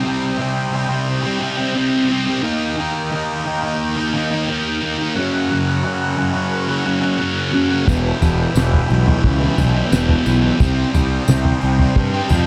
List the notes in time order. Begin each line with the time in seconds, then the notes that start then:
Already playing: D#4 G4 C5 G5
0.04 C3 G3
0.08 C4
0.38 C3 G3 C4
0.73 C3 G3 C4
0.89 G3 C4
1.23 G3 C4
1.39 C3 G3 C4
1.57 G3 C4
1.75 C3 G3 C4
2.09 C3 G3 C4
2.26 G3 C4
2.43 D#3 A#3 D#4 G4 A#4
2.77 D#3 A#3 D#4
3.11 D#3 A#3 D#4
3.44 D#3 A#3 D#4
3.63 A#3 D#4
3.96 A#3 D#4
4.13 D#3 A#3 D#4
4.31 A#3 D#4
4.48 D#3 A#3 D#4
4.82 D#3 A#3 D#4
4.99 A#3 D#4
5.16 F#2 C#3 F#3 C#4 F#4 F#5
5.51 F#2 C#3 F#3
5.84 F#2 C#3 F#3
6.17 F#2 C#3
6.21 F#3
6.33 F#3
6.37 C#3
6.68 C#3 F#3
6.85 F#2 C#3 F#3
7.01 C#3 F#3
7.19 F#2 C#3 F#3
7.53 F#2 C#3 F#3
7.68 C#3 F#3
7.86 E1 E2 B2 E3 E4 G4 B4 G5, kick, floor tom, tambourine
8.20 E1 E2 B2 E3, floor tom, tambourine
8.54 E1 E2 B2, snare, tambourine
8.58 E3
8.74 floor tom
8.88 B1 E2 B2 E3, tambourine
9.06 B2 E3, floor tom
9.24 C#2, kick
9.40 B2 E3
9.57 B1 E2 B2 E3, floor tom, mid tom, tambourine
9.74 B2 E3
9.91 E1 E2 B2 E3, snare, tambourine
10.09 floor tom
10.26 B1 E2 B2 E3, tambourine
10.42 B2 E3
10.59 C2 C3 G3 C4 D#4 C5, kick, floor tom, tambourine
10.94 C2 C3 G3 C4, floor tom, tambourine
11.28 C2 C3 G3 C4, snare, mid tom, tambourine
11.45 floor tom
11.61 C2 C3 G3 C4, tambourine
11.78 G3 C4, floor tom
11.96 G2, kick
12.12 G3 C4
12.29 F2 C3 G3 C4, floor tom, mid tom, tambourine